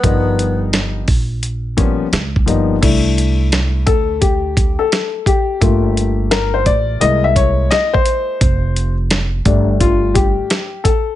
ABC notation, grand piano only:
X:1
M:4/4
L:1/16
Q:"Swing 16ths" 1/4=86
K:C
V:1 name="Grand piano"
[F,G,B,^D^A]6 z4 [F,G,^A,B,_D]2 z2 [F,G,A,B,^D]2 | z6 A2 G3 A3 G2- | G4 _B c d2 _e =e _d2 _e c3- | c3 z4 z F2 G4 A2 |]
V:2 name="Grand piano"
z16 | [A,DE]16 | [A,_B,F]8 [^G,B,E]8 | z6 [G,A,D]6 z4 |]